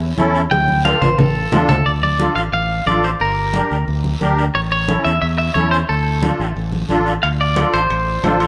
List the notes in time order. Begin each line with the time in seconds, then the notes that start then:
Already playing: E2
0.18 E2 C#4 E4 A4, high conga, short guiro
0.35 short guiro
0.51 D2 G5, cowbell, high conga, long guiro
0.68 high conga
0.85 D4 F4 A4 F5, high conga, high timbale, short guiro
1.02 A1 C5, low conga, high timbale, short guiro
1.18 A1 A4, cowbell, low conga, high timbale, long guiro
1.52 E2 D4 F4 A4, low conga, low timbale, short guiro
1.69 D2 A4, low conga, low timbale, short guiro
1.86 D2 D5, high conga, long guiro
2.03 D5, high conga
2.19 D4 F4 A4, high conga, short guiro
2.36 A1 F5, short guiro
2.53 A1 F5, high conga, long guiro
2.86 A1 D4 F4 A4 D5, high conga, short guiro
3.04 C5, short guiro
3.20 G1 A#4, high conga, long guiro
3.54 D4 G4 A#4, high conga, short guiro
3.71 D2, short guiro
3.88 D2, high conga, long guiro
4.04 high conga
4.21 D2 D4 G4 A#4, high conga, short guiro
4.38 short guiro
4.55 A1 C#5, high conga, long guiro
4.72 C#5
4.88 C#4 E4 A4, high conga, short guiro
5.04 E2 E5, short guiro
5.22 E2 E5, high conga, long guiro
5.38 E5
5.54 E2 C#4 E4 A4 C#5, high conga, short guiro
5.71 C5, short guiro
5.89 D2 A4, high conga, long guiro
6.23 D4 F4 A4, high conga, short guiro
6.40 A1, short guiro
6.56 A1, high conga, long guiro
6.72 high conga
6.89 A1 D4 F4 A4, high conga, short guiro
7.06 short guiro
7.23 D2 F5, high conga, high timbale, long guiro
7.41 D5
7.56 D4 F4 A4, high conga, high timbale, short guiro
7.74 A1 C5, high timbale, short guiro
7.90 A1, high conga, high timbale, long guiro
8.24 A1 D4 F4 A4, high conga, high timbale, low timbale, short guiro
8.40 high timbale, short guiro